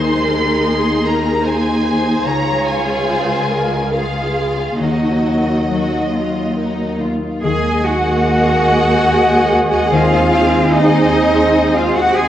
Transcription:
Already playing: D#2 D#3 G#3 D#4 G#4 C5 C6
0.13 G#3
0.27 A#4
0.40 D#4
0.66 G#4
0.92 D#4
1.05 A#4 A#5
1.18 G#4
1.44 D#4 C5 G#5
1.72 G#4
1.86 C5
1.99 D#4
2.25 C#2 C#3 F4 G#4 C#5 A#5
2.52 G#3
2.66 G#5
2.79 C#4
3.07 F4 C5
3.35 C#4
3.51 A#4
3.64 F4
3.93 F4 G#4 F5
4.22 F4
4.51 C#4
4.80 D#2 D#3 F#3 D#4 F#4 D#5
5.10 A#3
5.39 D#4
5.69 F#3 F#4
5.99 D#4
6.13 F4
6.56 D#4 A#4
7.00 F4
7.15 D#4
7.43 D#2 D#3 G#3 A#3 G#4 D#5 G#5
7.65 A#3
7.85 D#4 F#4 F#5
8.07 G#4
8.27 A#4
8.49 D#5
8.69 G#5
8.89 A#5
9.10 G#5
9.30 D#5
9.50 A#4
9.71 G#4
9.91 D#3 C4 F4 C5 F5
10.12 C4
10.32 D#4
10.53 G#4
10.73 D#4 C5 D#5
10.93 D#5
11.14 G#5
11.34 C6
11.55 G#5
11.75 F4 D#5 F5
11.95 F#4 C5 F#5
12.15 G#4 G#5

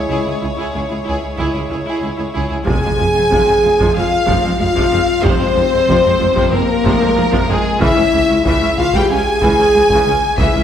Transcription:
Already playing: G#3 E4 C#5
0.09 C#2 E4 G#4
0.25 C#2 E4
0.30 G#4
0.41 C#2 E4 G#4
0.57 C#2 E4 G#4
0.74 C#2 E4 G#4
0.89 C#2 E4 G#4
1.05 C#2 E4 G#4
1.37 C#2 E4 G#4
1.54 C#2 E4 G#4
1.70 C#2 E4 G#4
1.85 C#2 E4 G#4
2.02 C#2 E4 G#4
2.18 C#2 E4 G#4
2.34 C#2 E4 G#4
2.50 C#2 E4 G#4
2.64 F2 C3 F3 G#4 G#5, taiko
2.69 F1 F2
2.81 G#3 C4
2.85 F2
2.97 F1 F2 F3 G#3
3.13 F2 G#3 C4
3.29 F1 F2 C3 F3, taiko
3.45 F2 G#3 C4
3.62 F1 F2 F3 G#3
3.79 F2 C3 F3, taiko
3.95 F1 F2 G#3 C4 F4 F5
4.26 F1 F2 C3 F3, taiko
4.43 F2 G#3 C4
4.59 F1 F2 F3 G#3 F4 F5
4.75 F2 C3 F3, taiko
4.91 F1 F2 G#3 C4
5.22 F1 F2 C3 F3 C4 C5, taiko
5.39 F2 G#3 C4
5.55 F1 F2 F3 G#3
5.73 F2 G#3 C4
5.88 F1 F2 C3 F3, taiko
6.04 F2 G#3 C4
6.19 F1 F2 F3 G#3
6.35 F2 C3 F3, taiko
6.52 F1 F2 G#3 A#3 C4 A#4
6.85 F1 F2 C3 F3, taiko
7.01 F2 G#3 C4
7.16 F1 F2 F3 G#3
7.31 F2 C3 F3, taiko
7.48 F1 F2 G#3 C4 G#4
7.80 C#2 C#3 E3 E4 E5, taiko
7.96 C#2 G#3 C#4
8.12 C#2 E3 G#3
8.28 C#2 G#3 C#4
8.44 C#2 C#3 E3 E4 E5, taiko
8.61 C#2 G#3 C#4
8.77 C#2 E3 G#3 F4 F5
8.93 C#2 C#3 E3 G4 G5, taiko
9.09 C#2 G#3 C#4 G#4 G#5
9.41 C#2 C#3 E3, taiko
9.57 C#2 G#3 C#4
9.73 C#2 E3 G#3
9.89 C#2 C#3, taiko
9.93 E3
10.05 C#2 G#3
10.09 C#4
10.37 C#2 C#3 E3 E4 E5, taiko
10.54 C#2 G#3 C#4

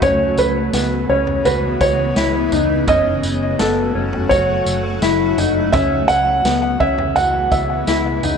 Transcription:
Already playing: C#3
0.02 C#2 E3 G#3 B3 C#4 C#5, kick, floor tom, tambourine
0.37 C#2 B4, tambourine
0.73 C#2 B3, snare, tambourine
1.09 C#2 C#4 C#5
1.27 floor tom
1.45 C#2 F#4 B4, floor tom, tambourine
1.80 C#2 C#5, kick, tambourine
2.16 C#2 E4, snare, tambourine
2.52 C#2 D#4, floor tom, tambourine
2.88 F#1 F#3 A3 C#4 F#4 D#5, kick, floor tom, tambourine
3.23 F#1, tambourine
3.59 F#1 B3 A4, snare, tambourine
3.95 F#1 C#4
4.13 floor tom
4.29 F#1 F#4 C#5, kick, floor tom, tambourine
4.66 F#1, tambourine
5.02 F#1 E4, snare, tambourine
5.37 F#1 D#4, floor tom, tambourine
5.72 C#2 C#3 E3 G#3 B3 C#4 E5, kick, floor tom, tambourine
6.08 C#2 F#5, tambourine
6.44 C#2 B3, snare, tambourine
6.80 C#2 C#4 E5, kick
6.98 floor tom
7.16 C#2 F#4 F#5, floor tom, tambourine
7.52 C#2 E5, kick, tambourine
7.87 C#2 E4, snare, tambourine
8.23 C#2 D#4, floor tom, tambourine

